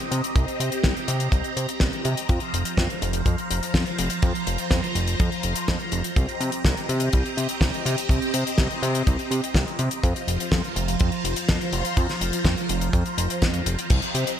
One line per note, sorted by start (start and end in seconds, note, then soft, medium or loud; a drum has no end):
0.00 2.25 C4 medium
0.00 2.25 G4 medium
0.00 2.25 D#5 medium
0.00 9.99 A#5 medium
0.11 0.22 C3 loud
0.11 closed hi-hat medium
0.24 closed hi-hat medium
0.36 0.46 C2 loud
0.36 kick loud
0.36 closed hi-hat medium
0.48 closed hi-hat soft
0.60 0.70 C3 medium
0.60 closed hi-hat loud
0.72 closed hi-hat medium
0.84 0.94 C2 medium
0.84 kick loud
0.84 snare loud
0.84 closed hi-hat medium
0.97 closed hi-hat soft
1.08 1.29 C3 loud
1.08 closed hi-hat loud
1.20 closed hi-hat medium
1.32 1.42 C2 loud
1.32 kick loud
1.32 closed hi-hat medium
1.44 closed hi-hat soft
1.57 1.67 C3 medium
1.57 closed hi-hat medium
1.69 closed hi-hat medium
1.80 1.91 C2 medium
1.80 kick loud
1.80 snare loud
1.80 closed hi-hat medium
1.93 closed hi-hat soft
2.05 2.15 C3 loud
2.05 closed hi-hat medium
2.17 closed hi-hat medium
2.29 2.39 F2 loud
2.29 6.12 F3 medium
2.29 6.12 F4 medium
2.29 6.12 C5 medium
2.29 kick loud
2.29 closed hi-hat medium
2.40 closed hi-hat soft
2.54 2.64 F1 medium
2.54 closed hi-hat medium
2.65 closed hi-hat medium
2.77 2.88 F2 medium
2.77 kick loud
2.77 snare loud
2.77 closed hi-hat medium
2.90 closed hi-hat soft
3.02 3.22 F1 loud
3.02 closed hi-hat medium
3.13 closed hi-hat medium
3.26 3.36 F2 medium
3.26 kick loud
3.26 closed hi-hat medium
3.38 closed hi-hat soft
3.50 3.60 F1 medium
3.50 closed hi-hat medium
3.63 closed hi-hat medium
3.74 3.84 F2 medium
3.74 kick medium
3.74 snare loud
3.74 closed hi-hat medium
3.86 closed hi-hat soft
3.98 4.09 F1 loud
3.98 closed hi-hat loud
4.10 closed hi-hat medium
4.22 4.33 F2 medium
4.22 kick loud
4.22 closed hi-hat medium
4.35 closed hi-hat soft
4.47 4.57 F1 medium
4.47 closed hi-hat medium
4.58 closed hi-hat medium
4.71 4.81 F2 medium
4.71 kick loud
4.71 snare loud
4.71 closed hi-hat medium
4.84 closed hi-hat soft
4.95 5.16 F1 loud
4.95 closed hi-hat medium
5.07 closed hi-hat medium
5.20 5.30 F2 loud
5.20 kick loud
5.20 closed hi-hat medium
5.32 closed hi-hat soft
5.43 5.54 F1 medium
5.43 closed hi-hat medium
5.55 closed hi-hat medium
5.68 5.78 F2 medium
5.68 kick loud
5.68 snare loud
5.68 closed hi-hat medium
5.80 closed hi-hat soft
5.92 6.02 F1 loud
5.92 closed hi-hat medium
6.04 closed hi-hat medium
6.16 6.27 C2 medium
6.16 10.00 C4 medium
6.16 10.00 G4 medium
6.16 10.00 D#5 medium
6.16 kick loud
6.16 closed hi-hat medium
6.29 closed hi-hat soft
6.40 6.51 C3 medium
6.40 closed hi-hat medium
6.52 closed hi-hat medium
6.65 6.75 C2 medium
6.65 kick loud
6.65 snare loud
6.65 closed hi-hat medium
6.77 closed hi-hat soft
6.89 7.09 C3 medium
6.89 closed hi-hat medium
7.00 closed hi-hat medium
7.13 7.23 C2 medium
7.13 kick loud
7.13 closed hi-hat medium
7.26 closed hi-hat soft
7.37 7.47 C3 medium
7.37 closed hi-hat medium
7.49 closed hi-hat medium
7.61 7.71 C2 medium
7.61 kick loud
7.61 snare loud
7.61 closed hi-hat medium
7.74 closed hi-hat soft
7.86 7.96 C3 loud
7.86 closed hi-hat loud
7.98 closed hi-hat medium
8.09 8.20 C2 loud
8.09 kick loud
8.09 closed hi-hat medium
8.22 closed hi-hat soft
8.34 8.44 C3 medium
8.34 closed hi-hat loud
8.47 closed hi-hat medium
8.58 8.68 C2 medium
8.58 kick loud
8.58 snare loud
8.58 closed hi-hat medium
8.71 closed hi-hat soft
8.82 9.03 C3 loud
8.82 closed hi-hat medium
8.95 closed hi-hat medium
9.07 9.17 C2 loud
9.07 kick loud
9.07 closed hi-hat medium
9.19 closed hi-hat soft
9.31 9.41 C3 medium
9.31 closed hi-hat medium
9.44 closed hi-hat medium
9.54 9.65 C2 medium
9.54 kick medium
9.54 snare loud
9.54 closed hi-hat medium
9.67 closed hi-hat soft
9.79 9.89 C3 loud
9.79 closed hi-hat medium
9.91 closed hi-hat medium
10.03 10.14 F2 loud
10.03 13.87 F3 medium
10.03 13.87 F4 medium
10.03 13.87 C5 medium
10.03 13.87 A#5 medium
10.03 kick loud
10.03 closed hi-hat medium
10.16 closed hi-hat soft
10.28 10.38 F1 medium
10.28 closed hi-hat loud
10.40 closed hi-hat medium
10.52 10.62 F2 medium
10.52 kick loud
10.52 snare loud
10.52 closed hi-hat medium
10.64 closed hi-hat soft
10.76 10.96 F1 loud
10.76 closed hi-hat medium
10.88 closed hi-hat medium
10.99 11.11 F2 loud
10.99 kick loud
10.99 closed hi-hat medium
11.12 closed hi-hat soft
11.24 11.34 F1 medium
11.24 closed hi-hat medium
11.36 closed hi-hat medium
11.49 11.59 F2 medium
11.49 kick loud
11.49 snare loud
11.49 closed hi-hat medium
11.61 closed hi-hat soft
11.73 11.83 F1 loud
11.73 closed hi-hat medium
11.85 closed hi-hat medium
11.97 12.07 F2 loud
11.97 kick loud
11.97 closed hi-hat medium
12.09 snare soft
12.09 closed hi-hat soft
12.21 12.31 F1 medium
12.21 closed hi-hat medium
12.33 closed hi-hat medium
12.45 12.55 F2 medium
12.45 kick medium
12.45 snare loud
12.45 closed hi-hat medium
12.58 closed hi-hat soft
12.69 12.90 F1 loud
12.69 closed hi-hat loud
12.81 closed hi-hat medium
12.93 13.04 F2 loud
12.93 kick loud
12.93 closed hi-hat medium
13.06 closed hi-hat soft
13.18 13.28 F1 medium
13.18 closed hi-hat loud
13.30 closed hi-hat medium
13.42 13.62 F2 medium
13.42 kick medium
13.42 snare loud
13.42 closed hi-hat medium
13.54 closed hi-hat soft
13.66 13.76 F1 loud
13.66 closed hi-hat loud
13.79 closed hi-hat medium
13.90 14.01 C2 loud
13.90 14.40 C4 medium
13.90 14.40 G4 medium
13.90 14.40 D#5 medium
13.90 14.40 A#5 loud
13.90 kick loud
13.90 closed hi-hat medium
13.90 crash loud
14.02 closed hi-hat soft
14.15 14.25 C3 medium
14.15 closed hi-hat loud
14.27 closed hi-hat medium